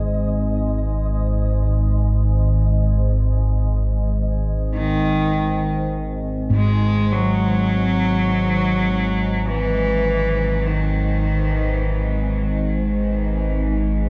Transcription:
Already playing: G#1 G#2 D#3 D#5
4.74 G#1 D#3
6.50 G#2
6.55 G#3
7.12 F#3
9.48 E3
10.66 D#3

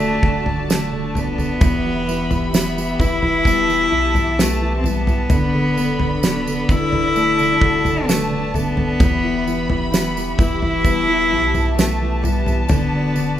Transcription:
Already playing: D1 D3 A3 D4 F#4 D5 A5
0.00 D3, tambourine
0.23 D1 D3 F#4, kick
0.46 D3, floor tom
0.69 D3 A3 D4, snare, tambourine
0.93 D3
1.15 D3 A3 B3, floor tom, tambourine
1.38 D3, floor tom, tambourine
1.61 E1 E2 E3 G4 E5 B5, kick, floor tom, tambourine
1.86 E3
2.07 E3 B3, tambourine
2.31 E3, floor tom, tambourine
2.53 E3 B3 E4, snare, tambourine
2.77 E3, tambourine
2.99 E1 E3 B3 E4, kick, floor tom, tambourine
3.22 E3, floor tom
3.45 G3 B3 A5, kick, tambourine
3.69 E3, tambourine
3.91 B1 E3 E4
4.15 E3, floor tom, tambourine
4.38 E3 A3 B3, snare, tambourine
4.62 E3
4.78 C4
4.84 E3 G3 B3, floor tom, tambourine
5.07 E3, floor tom, tambourine
5.30 D1 D3 A4 D5 B5, floor tom, tambourine
5.55 D3
5.77 D3 B3, tambourine
6.00 D3, floor tom
6.23 D3 B3 F#4, snare, tambourine
6.47 D3, tambourine
6.69 D1 D3 B3 E4, kick, tambourine
6.92 D3, floor tom
7.15 A3 A5, tambourine
7.39 D3, tambourine
7.61 D1 D3 F#4, kick
7.85 D3, floor tom, tambourine
8.07 D3 A3 B3, snare, tambourine
8.32 D3
8.54 D3 A3 B3, floor tom, tambourine
8.77 D3, floor tom
9.00 E1 E2 E3 G4 E5 B5, kick, floor tom, tambourine
9.24 E3
9.47 E3 B3, tambourine
9.70 E3, floor tom
9.92 E3 B3 E4, snare, tambourine
10.17 E3, tambourine
10.38 E1 E3 B3 E4, kick, floor tom, tambourine
10.62 E3, floor tom
10.84 G3 B3 A5, kick, tambourine
11.09 E3
11.31 B1 E3 E4
11.54 E3, floor tom, tambourine
11.77 E3 A3 B3, snare, tambourine
12.02 E3
12.22 E3 G3 B3, floor tom, tambourine
12.46 E3, floor tom, tambourine
12.69 D1 D3 B3 F#4 D5, floor tom, tambourine
12.93 D3
13.15 D3 D4, tambourine

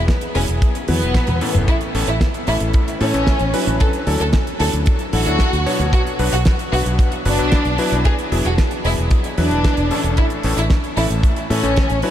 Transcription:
0.08 kick, snare, closed hi-hat
0.21 closed hi-hat
0.35 E1 F#3 B3 C#4 E4 G#4, open hi-hat
0.48 E1, closed hi-hat
0.62 kick, closed hi-hat
0.75 closed hi-hat
0.88 E2 F#3 B3 E4 B4, open hi-hat, high tom
1.02 E1, closed hi-hat
1.14 kick, snare, closed hi-hat, mid tom
1.27 E2, closed hi-hat, mid tom
1.41 A2 E3 A3 C#4 A4, open hi-hat
1.55 E1, closed hi-hat, mid tom
1.68 E4, kick, closed hi-hat
1.81 closed hi-hat
1.94 A1 A2 E3 A3 C#4 A4, open hi-hat
2.07 A1 E4, closed hi-hat
2.21 kick, snare, closed hi-hat
2.34 closed hi-hat
2.47 A1 A2 E3 A3 C#4 E4 A4, open hi-hat
2.60 A1, closed hi-hat
2.74 kick, closed hi-hat
2.88 closed hi-hat
3.01 A2 E3 A3 C#4 A4, open hi-hat
3.14 A1 A2 E3 A3 C#4 A4, closed hi-hat
3.27 kick, snare, closed hi-hat
3.39 A1, closed hi-hat
3.54 F#3 D4 E4 B4, open hi-hat
3.67 A1, closed hi-hat
3.80 A4, kick, closed hi-hat
3.93 closed hi-hat
4.07 D2 F#3 D4 E4 A4, open hi-hat
4.20 D2 A4, closed hi-hat
4.33 kick, snare, closed hi-hat
4.47 closed hi-hat
4.60 D2 F#3 D4 E4 A4, open hi-hat
4.73 D2, closed hi-hat
4.86 kick, closed hi-hat
4.99 closed hi-hat
5.13 A1 F#3 D4 E4 F#4 A4, open hi-hat
5.26 D2 F#3 D4 E4 A4, closed hi-hat
5.39 kick, snare, closed hi-hat
5.53 D2, closed hi-hat
5.66 B2 F#3 B3 D4 C#5, open hi-hat
5.80 D2, closed hi-hat
5.93 F#4, kick, closed hi-hat
6.07 closed hi-hat
6.19 B1 B2 F#3 B3 D4 B4, open hi-hat
6.33 B1 F#4, closed hi-hat
6.45 kick, snare, closed hi-hat
6.59 closed hi-hat
6.72 B1 B2 F#3 B3 D4 F#4 B4, open hi-hat
6.86 B1, closed hi-hat
6.99 kick, closed hi-hat
7.12 closed hi-hat
7.25 F#1 B2 F#3 B3 D4 B4, open hi-hat
7.38 B1 B2 F#3 B3 D4 B4, closed hi-hat
7.52 kick, snare, closed hi-hat
7.65 B1, closed hi-hat
7.78 F#3 B3 E4 B4, open hi-hat
7.92 B1, closed hi-hat
8.05 G#4, kick, closed hi-hat
8.19 closed hi-hat
8.32 E1 F#3 B3 E4 G#4, open hi-hat
8.45 E1 F#4, closed hi-hat
8.58 kick, snare, closed hi-hat
8.71 closed hi-hat
8.85 E1 F#3 B3 E4 G#4, open hi-hat
8.98 E1, closed hi-hat
9.11 kick, closed hi-hat
9.24 closed hi-hat
9.38 E2 F#3 B3 D4 E4 B4, open hi-hat
9.51 E1, closed hi-hat
9.64 kick, snare, closed hi-hat
9.77 E1, closed hi-hat
9.91 A2 E3 A3 C#4 A4, open hi-hat
10.04 E1, closed hi-hat
10.17 E4, kick, closed hi-hat
10.30 closed hi-hat
10.43 A1 A2 E3 A3 C#4 A4, open hi-hat
10.57 A1 E4, closed hi-hat
10.70 kick, snare, closed hi-hat
10.84 closed hi-hat
10.97 A1 A2 E3 A3 C#4 E4 A4, open hi-hat
11.10 A1, closed hi-hat
11.23 kick, closed hi-hat
11.36 closed hi-hat
11.50 A2 E3 A3 C#4 A4, open hi-hat
11.63 A1 A2 E3 A3 C#4 A4, closed hi-hat
11.76 kick, snare, closed hi-hat
11.90 A1, closed hi-hat
12.02 F#3 D4 E4 B4, open hi-hat

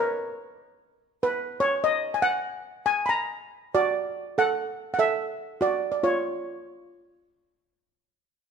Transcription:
Already playing: A#4
1.23 B4
1.60 C#5
1.84 D#5
2.14 G#5
2.22 F#5
2.86 G#5
3.06 A#5 B5
3.75 F#4 D5
4.38 A4 F#5
4.94 F#5
4.99 A4 E5
5.61 F#4 D5
5.92 D5
6.03 F4 C#5

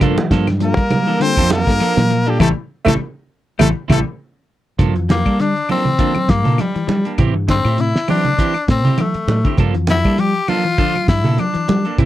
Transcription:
0.01 G2 F3 A#3 D4 F4 A4, kick, closed hi-hat, low conga, claves
0.16 E3, muted clean electric guitar stroke, high conga
0.31 G2 F3 A#3 A4, kick, snare, closed hi-hat
0.47 muted clean electric guitar stroke, snare, closed hi-hat, high conga, claves
0.60 F3 A#3 D4 F4 A4 A#4, closed hi-hat
0.77 G3, muted clean electric guitar stroke, kick, closed hi-hat
0.91 muted clean electric guitar stroke, closed hi-hat, high conga, low conga, claves
1.07 E3 A#3 D4 A4
1.20 D3 A#3 C4 D4 F4 A4 C5, muted clean electric guitar stroke, closed hi-hat
1.37 F2 F3 A#3 D4 A4, kick, closed hi-hat, claves
1.50 F3 A#3 A#4, snare, closed hi-hat, high conga
1.67 G2 A#3 D4 F4 A4, kick, snare
1.80 F3 A#3 D4 A4, closed hi-hat, claves
1.97 A#2 E3, snare, closed hi-hat, high conga
2.10 F3, muted clean electric guitar stroke, closed hi-hat
2.26 G3 A#3 D4 F4 G4 A4
2.39 A1 E3 G3 A3 C4 E4 G4 A4, kick, snare, low conga, claves
2.85 A1 E3 G3 A3 C4 E4 G4 A4, kick, snare, low conga, claves
3.59 A1 E3 G3 A3 C4 E4 G4 A4, kick, snare, low conga, claves
3.88 A1 E3 G3 A3 C4 E4 G4 A4, kick, snare, low conga, claves
3.92 A4
4.79 G2 F3 A#3 D4 A4, kick, closed hi-hat, low conga, claves
4.95 F2 E3, muted clean electric guitar stroke, closed hi-hat
5.09 F3 A#3, muted clean electric guitar stroke, snare, closed hi-hat, high conga
5.25 G3 A#3 D4 A4, kick, closed hi-hat, claves
5.39 D3 D4, muted clean electric guitar stroke, snare, closed hi-hat
5.56 closed hi-hat
5.69 F3 A#3 C4 D4 A4, open hi-hat, high conga, claves
5.85 E3, muted clean electric guitar stroke, low conga
5.99 D3 F3 A#3 D4 A4, kick, closed hi-hat
6.15 muted clean electric guitar stroke, high conga, claves
6.28 G2 F3 A#3, muted clean electric guitar stroke, kick, snare, closed hi-hat
6.44 A#2 A#3 D4 A4, snare, closed hi-hat, low conga
6.58 F3 G3, closed hi-hat, high conga, claves
6.75 E3, muted clean electric guitar stroke, muted fingered electric bass stroke, closed hi-hat
6.87 F3 G3, muted clean electric guitar stroke, closed hi-hat, high conga
7.05 A#3 D4, muted clean electric guitar stroke, closed hi-hat
7.18 A2 E3 C4 E4 G4, kick, closed hi-hat, low conga, claves
7.34 G2 E3, muted clean electric guitar stroke
7.48 D3 C4, muted clean electric guitar stroke, kick, snare, closed hi-hat, high conga
7.65 A2 C4 E4 G4, snare, claves
7.78 C3 E4, muted clean electric guitar stroke, closed hi-hat
7.96 snare
8.08 E3 C4 D4 E4 G4, open hi-hat, high conga, claves
8.25 D3, muted clean electric guitar stroke, closed hi-hat, low conga
8.38 E3 C4 E4 G4, kick, closed hi-hat
8.54 muted clean electric guitar stroke, closed hi-hat, claves
8.68 A2 C3 C4, muted clean electric guitar stroke, kick, snare, closed hi-hat
8.85 C3 C4 E4 G4, snare, closed hi-hat, low conga
8.98 E3 A3, closed hi-hat, high conga, claves
9.14 muted fingered electric bass stroke, muted clean electric guitar stroke, closed hi-hat
9.28 A2, muted clean electric guitar stroke, closed hi-hat, high conga
9.45 D3 C4 E4 G4, kick, closed hi-hat
9.57 G2 F3 A#3 D4 A4, kick, closed hi-hat, low conga, claves
9.75 F2 E3, muted clean electric guitar stroke, closed hi-hat
9.87 F3 E4, muted clean electric guitar stroke, snare, closed hi-hat, high conga
10.05 G3 A#3 D4 A4, kick, closed hi-hat, claves
10.18 F3 G4, muted clean electric guitar stroke, closed hi-hat
10.35 closed hi-hat
10.48 F3 A#3 D4 F4 A4, open hi-hat, high conga, claves
10.64 E3, muted clean electric guitar stroke
10.78 D3 F3 D4 A4, muted clean electric guitar stroke, kick, closed hi-hat
10.95 muted clean electric guitar stroke, high conga, claves
11.08 G2 F3 E4, muted clean electric guitar stroke, kick, snare, closed hi-hat
11.24 A#2 A#3 D4 A4, snare, closed hi-hat, low conga
11.37 F3 D4, closed hi-hat, high conga, claves
11.54 E3, muted fingered electric bass stroke, muted clean electric guitar stroke, closed hi-hat
11.68 F3 G3, muted clean electric guitar stroke, closed hi-hat, high conga
11.85 A#3 D4 A4, closed hi-hat
11.98 A2 E3 C4 E4, muted clean electric guitar stroke, kick, closed hi-hat, low conga, claves

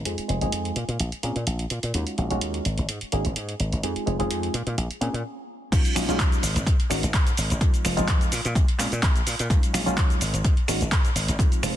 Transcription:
0.05 F2 G#3 C4 D#4 F4 G#4, closed hi-hat
0.18 muted slap bass stroke, closed hi-hat
0.28 F1 G#3 C4 D#4 F4 G#4, closed hi-hat
0.41 F1 G#3 C4 D#4 F4 G#4, closed hi-hat
0.52 F2, closed hi-hat
0.65 closed hi-hat
0.76 A#2, closed hi-hat
0.88 A#2, closed hi-hat
1.00 A#1, closed hi-hat
1.12 closed hi-hat
1.23 A#2 A#3 C4 C#4 F4 G#4, closed hi-hat
1.36 A#2, closed hi-hat
1.47 A#1, closed hi-hat
1.59 closed hi-hat
1.70 A#2, closed hi-hat
1.83 A#2, closed hi-hat
1.94 D#2 G#3 C#4 D#4 F4 F#4, closed hi-hat
2.07 closed hi-hat
2.18 A#1 G#3 C#4 D#4 F4 F#4, closed hi-hat
2.30 A#1 G#3 C#4 D#4 F4 F#4, closed hi-hat
2.41 D#2, closed hi-hat
2.54 closed hi-hat
2.65 G#1, closed hi-hat
2.78 G#1, closed hi-hat
2.89 G#2, closed hi-hat
3.01 muted slap bass stroke, closed hi-hat
3.12 G#1 A#3 C#4 D#4 F#4 G#4, closed hi-hat
3.25 G#1, closed hi-hat
3.36 G#2, closed hi-hat
3.49 closed hi-hat
3.60 G#1, closed hi-hat
3.72 G#1, closed hi-hat
3.83 F2 G#3 C4 D#4 F4 G#4, closed hi-hat
3.96 muted slap bass stroke, closed hi-hat
4.06 F1 G#3 C4 D#4 F4 G#4, closed hi-hat
4.19 F1 G#3 C4 D#4 F4 G#4, closed hi-hat
4.31 F2, closed hi-hat
4.43 closed hi-hat
4.54 A#2, closed hi-hat
4.67 A#2, closed hi-hat
4.77 A#1, closed hi-hat
4.91 closed hi-hat
5.01 A#2 A#3 C4 C#4 F4 G#4, closed hi-hat
5.14 A#2, closed hi-hat
5.72 D#2 F#3 G#3 C#4 D#4 F4, kick, closed hi-hat, crash, shaker
5.85 closed hi-hat, shaker
5.95 A#1 F#3 G#3 C#4 D#4 F4, finger snap, open hi-hat, shaker
6.08 A#1 F#3 G#3 C#4 D#4 F4, closed hi-hat, shaker
6.19 D#2, kick, clap, closed hi-hat, shaker
6.32 closed hi-hat, shaker
6.43 G#1, open hi-hat, shaker
6.55 G#1, closed hi-hat, shaker
6.67 G#2, kick, closed hi-hat, shaker
6.79 muted slap bass stroke, closed hi-hat
6.90 G#1 G#3 A#3 C#4 D#4 F#4, finger snap, open hi-hat, shaker
7.03 G#1, closed hi-hat, shaker
7.14 kick, clap, closed hi-hat, shaker
7.27 closed hi-hat, shaker
7.37 G#1, open hi-hat, shaker
7.50 G#1, closed hi-hat, shaker
7.61 F3 G#3 C4 D#4 F4, kick, closed hi-hat, shaker
7.74 closed hi-hat, shaker
7.85 F1 F3 G#3 C4 D#4 F4, finger snap, open hi-hat, shaker
7.97 F1 F3 G#3 C4 D#4 F4, closed hi-hat, shaker
8.08 kick, clap, closed hi-hat, shaker
8.21 closed hi-hat, shaker
8.32 A#2, open hi-hat, shaker
8.45 A#2, closed hi-hat, shaker
8.55 A#1, kick, closed hi-hat, shaker
8.68 closed hi-hat
8.78 A#2 G#3 A#3 C4 C#4 F4, finger snap, clap, open hi-hat, shaker
8.92 A#2, closed hi-hat, shaker
9.03 A#1, kick, clap, closed hi-hat, shaker
9.16 closed hi-hat, shaker
9.27 A#2, open hi-hat, shaker
9.39 A#2, closed hi-hat, shaker
9.50 D#2 F#3 G#3 C#4 D#4 F4, kick, closed hi-hat, shaker
9.63 closed hi-hat, shaker
9.73 A#1 F#3 G#3 C#4 D#4 F4, finger snap, open hi-hat, shaker
9.86 A#1 F#3 G#3 C#4 D#4 F4, closed hi-hat, shaker
9.97 kick, clap, closed hi-hat, shaker
10.10 closed hi-hat, shaker
10.21 G#1, open hi-hat, shaker
10.34 G#1, closed hi-hat, shaker
10.45 kick, closed hi-hat, shaker
10.57 muted slap bass stroke, closed hi-hat
10.68 G#1 G#3 A#3 C#4 D#4 F#4, finger snap, open hi-hat, shaker
10.81 G#1, closed hi-hat, shaker
10.92 kick, clap, closed hi-hat, shaker
11.05 closed hi-hat, shaker
11.15 G#1, open hi-hat, shaker
11.28 G#1, closed hi-hat, shaker
11.39 F2 F3 G#3 C4 D#4 F4, kick, closed hi-hat, shaker
11.52 muted slap bass stroke, closed hi-hat, shaker
11.63 F1 F3 G#3 C4 D#4 F4, finger snap, open hi-hat, shaker

